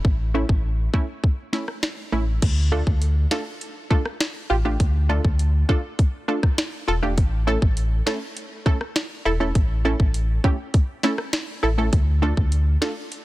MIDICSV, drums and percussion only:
0, 0, Header, 1, 2, 480
1, 0, Start_track
1, 0, Key_signature, -1, "minor"
1, 0, Tempo, 594059
1, 39, Time_signature, 4, 2, 24, 8
1, 10705, End_track
2, 0, Start_track
2, 0, Title_t, "Drums"
2, 38, Note_on_c, 9, 36, 113
2, 119, Note_off_c, 9, 36, 0
2, 397, Note_on_c, 9, 36, 93
2, 478, Note_off_c, 9, 36, 0
2, 756, Note_on_c, 9, 36, 87
2, 837, Note_off_c, 9, 36, 0
2, 999, Note_on_c, 9, 36, 88
2, 1080, Note_off_c, 9, 36, 0
2, 1237, Note_on_c, 9, 38, 65
2, 1318, Note_off_c, 9, 38, 0
2, 1357, Note_on_c, 9, 37, 85
2, 1438, Note_off_c, 9, 37, 0
2, 1478, Note_on_c, 9, 38, 119
2, 1479, Note_on_c, 9, 26, 101
2, 1558, Note_off_c, 9, 38, 0
2, 1559, Note_off_c, 9, 26, 0
2, 1958, Note_on_c, 9, 42, 80
2, 1958, Note_on_c, 9, 49, 97
2, 1959, Note_on_c, 9, 36, 113
2, 2039, Note_off_c, 9, 36, 0
2, 2039, Note_off_c, 9, 42, 0
2, 2039, Note_off_c, 9, 49, 0
2, 2318, Note_on_c, 9, 36, 99
2, 2399, Note_off_c, 9, 36, 0
2, 2437, Note_on_c, 9, 42, 84
2, 2518, Note_off_c, 9, 42, 0
2, 2676, Note_on_c, 9, 38, 111
2, 2677, Note_on_c, 9, 26, 92
2, 2757, Note_off_c, 9, 38, 0
2, 2758, Note_off_c, 9, 26, 0
2, 2919, Note_on_c, 9, 42, 64
2, 3000, Note_off_c, 9, 42, 0
2, 3156, Note_on_c, 9, 36, 91
2, 3237, Note_off_c, 9, 36, 0
2, 3276, Note_on_c, 9, 37, 89
2, 3357, Note_off_c, 9, 37, 0
2, 3397, Note_on_c, 9, 38, 124
2, 3398, Note_on_c, 9, 26, 109
2, 3398, Note_on_c, 9, 42, 76
2, 3478, Note_off_c, 9, 38, 0
2, 3478, Note_off_c, 9, 42, 0
2, 3479, Note_off_c, 9, 26, 0
2, 3878, Note_on_c, 9, 42, 78
2, 3879, Note_on_c, 9, 36, 116
2, 3959, Note_off_c, 9, 36, 0
2, 3959, Note_off_c, 9, 42, 0
2, 4238, Note_on_c, 9, 36, 101
2, 4319, Note_off_c, 9, 36, 0
2, 4358, Note_on_c, 9, 42, 80
2, 4439, Note_off_c, 9, 42, 0
2, 4597, Note_on_c, 9, 36, 85
2, 4678, Note_off_c, 9, 36, 0
2, 4839, Note_on_c, 9, 42, 64
2, 4840, Note_on_c, 9, 36, 97
2, 4920, Note_off_c, 9, 36, 0
2, 4920, Note_off_c, 9, 42, 0
2, 5196, Note_on_c, 9, 37, 89
2, 5197, Note_on_c, 9, 36, 100
2, 5277, Note_off_c, 9, 36, 0
2, 5277, Note_off_c, 9, 37, 0
2, 5318, Note_on_c, 9, 38, 127
2, 5318, Note_on_c, 9, 42, 83
2, 5319, Note_on_c, 9, 26, 105
2, 5399, Note_off_c, 9, 38, 0
2, 5399, Note_off_c, 9, 42, 0
2, 5400, Note_off_c, 9, 26, 0
2, 5798, Note_on_c, 9, 42, 79
2, 5799, Note_on_c, 9, 36, 120
2, 5879, Note_off_c, 9, 36, 0
2, 5879, Note_off_c, 9, 42, 0
2, 6158, Note_on_c, 9, 36, 104
2, 6239, Note_off_c, 9, 36, 0
2, 6277, Note_on_c, 9, 42, 84
2, 6358, Note_off_c, 9, 42, 0
2, 6518, Note_on_c, 9, 38, 112
2, 6519, Note_on_c, 9, 26, 94
2, 6599, Note_off_c, 9, 38, 0
2, 6600, Note_off_c, 9, 26, 0
2, 6760, Note_on_c, 9, 42, 66
2, 6841, Note_off_c, 9, 42, 0
2, 6997, Note_on_c, 9, 36, 93
2, 7078, Note_off_c, 9, 36, 0
2, 7117, Note_on_c, 9, 37, 85
2, 7198, Note_off_c, 9, 37, 0
2, 7238, Note_on_c, 9, 38, 126
2, 7238, Note_on_c, 9, 42, 76
2, 7239, Note_on_c, 9, 26, 105
2, 7319, Note_off_c, 9, 38, 0
2, 7319, Note_off_c, 9, 42, 0
2, 7320, Note_off_c, 9, 26, 0
2, 7718, Note_on_c, 9, 42, 78
2, 7719, Note_on_c, 9, 36, 120
2, 7799, Note_off_c, 9, 42, 0
2, 7800, Note_off_c, 9, 36, 0
2, 8078, Note_on_c, 9, 36, 97
2, 8159, Note_off_c, 9, 36, 0
2, 8196, Note_on_c, 9, 42, 85
2, 8276, Note_off_c, 9, 42, 0
2, 8436, Note_on_c, 9, 36, 90
2, 8517, Note_off_c, 9, 36, 0
2, 8677, Note_on_c, 9, 42, 67
2, 8679, Note_on_c, 9, 36, 99
2, 8758, Note_off_c, 9, 42, 0
2, 8760, Note_off_c, 9, 36, 0
2, 8915, Note_on_c, 9, 38, 68
2, 8996, Note_off_c, 9, 38, 0
2, 9035, Note_on_c, 9, 37, 90
2, 9116, Note_off_c, 9, 37, 0
2, 9155, Note_on_c, 9, 38, 120
2, 9155, Note_on_c, 9, 42, 78
2, 9156, Note_on_c, 9, 26, 103
2, 9236, Note_off_c, 9, 38, 0
2, 9236, Note_off_c, 9, 42, 0
2, 9237, Note_off_c, 9, 26, 0
2, 9637, Note_on_c, 9, 42, 79
2, 9638, Note_on_c, 9, 36, 121
2, 9718, Note_off_c, 9, 36, 0
2, 9718, Note_off_c, 9, 42, 0
2, 9997, Note_on_c, 9, 36, 95
2, 10078, Note_off_c, 9, 36, 0
2, 10116, Note_on_c, 9, 42, 82
2, 10197, Note_off_c, 9, 42, 0
2, 10357, Note_on_c, 9, 38, 108
2, 10358, Note_on_c, 9, 26, 91
2, 10438, Note_off_c, 9, 38, 0
2, 10439, Note_off_c, 9, 26, 0
2, 10599, Note_on_c, 9, 42, 65
2, 10680, Note_off_c, 9, 42, 0
2, 10705, End_track
0, 0, End_of_file